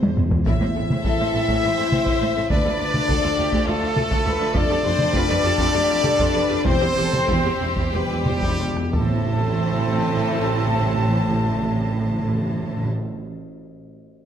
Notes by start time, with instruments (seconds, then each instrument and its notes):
Already playing: trombone section C3, french horn section C4, viola section C4, violin section C5, flute section C5
0.01 timpani E2, cello section E2, taiko high
0.08 timpani E2
0.15 double bass section E1, timpani E2, cello section E2, taiko low-mid
0.23 timpani E2
0.30 timpani E2, cello section E2, taiko low
0.38 timpani E2
0.46 double bass section A1, timpani A2, cello section A2, trombone section E3 C4, viola section A3 E4, french horn section E4, violin section E5, trumpet E5, flute section E5, taiko
0.60 cello section A2, viola section E4 C5
0.75 double bass section A1, cello section A2, viola section C4 A4
0.90 cello section A2, viola section E4 C5, taiko mid
1.04 double bass section A1, cello section A2, viola section A3 E4, violin section A4, taiko
1.20 cello section A2, viola section E4 C5
1.33 double bass section A1, cello section A2, viola section C4 A4
1.48 cello section A2, viola section A3 E4, taiko
1.63 double bass section A1, cello section A2, viola section E4 C5, violin section C5
1.78 cello section A2, viola section C4 A4
1.92 double bass section A1, cello section A2, viola section E4 C5, taiko mid
2.06 cello section A2, viola section A3 E4, taiko
2.20 double bass section A1, cello section A2, viola section E4 C5
2.36 cello section A2, viola section C4 A4
2.50 double bass section D2, cello section D2, trombone section F3 A3, viola section A3 D4, french horn section D4, violin section B4 D5, trumpet D5, flute section D5, taiko
2.65 cello section D2, viola section F4 A4
2.78 double bass section D2, cello section D2, viola section D4 F4
2.93 cello section D2, viola section F4 A4, taiko mid
3.07 cello section D2, double bass section D2, viola section A3 D4, violin section A4, taiko
3.22 cello section D2, viola section F4 A4
3.37 double bass section D2, cello section D2, viola section D4 F4, violin section G4
3.51 cello section D2, viola section A3 D4, taiko
3.66 double bass section D2, cello section D2, french horn section A3, violin section F4 A4, viola section F4 A4, trumpet A4, flute section A4
3.81 cello section D2, viola section D4 F4
3.95 double bass section D2, cello section D2, viola section F4 A4, violin section A4, taiko mid
4.11 cello section D2, viola section A3 D4, taiko
4.25 double bass section D2, cello section D2, viola section F4 A4, violin section B4
4.39 cello section D2, viola section D4 F4
4.54 double bass section F1, cello section F2, trombone section G3, viola section C4 F4, french horn section D4, violin section A4 D5, trumpet D5, flute section D5, taiko
4.69 cello section F2, viola section G4 A4
4.84 double bass section F1, cello section F2, viola section F4 G4, violin section C5
4.99 cello section F2, viola section G4 A4, taiko mid
5.13 double bass section F1, cello section F2, viola section C4 F4, violin section B4, taiko
5.29 cello section F2, viola section G4 A4
5.43 double bass section F1, cello section F2, viola section F4 G4, violin section A4
5.58 cello section F2, viola section C4 F4, taiko
5.73 double bass section F1, cello section F2, viola section G4 A4, violin section G4
5.89 cello section F2, viola section F4 G4
6.04 double bass section F1, cello section F2, viola section G4 A4, violin section A4, taiko mid
6.19 cello section F2, viola section C4 F4, taiko
6.34 double bass section F1, cello section F2, viola section G4 A4, violin section B4
6.50 cello section F2, viola section F4 G4
6.65 double bass section E1, cello section E2, trombone section C4, viola section C4 E4, french horn section C4, trumpet C5, violin section C5, flute section C5, taiko
6.75 timpani E2
6.81 cello section E2, timpani E2, viola section G4 C5
6.90 timpani E2
6.96 double bass section E1, cello section E2, timpani E2, viola section E4 G4, violin section A4
7.06 timpani E2
7.12 cello section E2, timpani E2, viola section G4 C5, taiko mid
7.23 timpani E2
7.28 double bass section E1, cello section E2, timpani E2, viola section C4 E4, violin section G4, taiko
7.39 timpani E2
7.44 cello section E2, timpani E2, viola section G4 C5
7.56 timpani E2
7.61 double bass section E1, cello section E2, timpani E2, viola section E4 G4
7.72 timpani E2
7.76 cello section E2, viola section C4 E4, taiko
7.81 timpani E2
7.90 double bass section E1, timpani E2, french horn section G3, violin section G4 B4, flute section G4, trumpet G4
7.94 cello section E2, viola section G4 C5
7.98 timpani E2
8.07 timpani E2, cello section E2, viola section E4 G4
8.15 timpani E2
8.23 double bass section E1, timpani E2, taiko mid
8.27 cello section E2, viola section G4 C5, violin section C5
8.32 timpani E2
8.41 timpani E2, cello section E2, viola section C4 E4, taiko
8.49 timpani E2
8.58 double bass section E1, timpani E2, cello section E2, viola section G4 C5
8.66 timpani E2
8.75 timpani E2, cello section E2, viola section E4 G4, taiko rim
8.83 timpani E2
8.92 double bass section A1, timpani A2, cello section A2, trombone section E3 C4, french horn section A3, viola section C4 E4, trumpet A4, violin section C5 A5, flute section A5, taiko low
9.01 timpani A2
9.08 timpani A2
9.15 timpani A2
9.22 timpani A2
9.29 timpani A2
9.36 timpani A2
9.44 timpani A2
9.51 timpani A2
9.58 timpani A2
9.65 timpani A2
9.72 timpani A2
9.79 timpani A2
9.86 timpani A2
9.94 timpani A2
10.01 timpani A2
10.08 timpani A2
10.15 timpani A2
10.23 timpani A2
10.30 timpani A2
10.38 timpani A2
10.45 timpani A2
10.53 timpani A2
10.60 timpani A2
10.67 timpani A2
10.74 timpani A2
10.81 timpani A2
10.87 timpani A2
10.94 timpani A2
11.01 timpani A2
11.08 timpani A2
11.15 timpani A2
11.22 timpani A2
11.29 timpani A2
11.36 timpani A2
11.43 timpani A2
11.49 timpani A2
11.56 timpani A2
11.63 timpani A2
11.70 timpani A2
11.77 timpani A2
11.84 timpani A2
11.91 timpani A2
11.98 timpani A2
12.05 timpani A2
12.12 timpani A2
12.19 timpani A2
12.26 timpani A2
12.33 timpani A2
12.40 timpani A2
12.47 timpani A2
12.55 timpani A2
12.61 timpani A2
12.68 timpani A2
12.77 timpani A2
12.83 timpani A2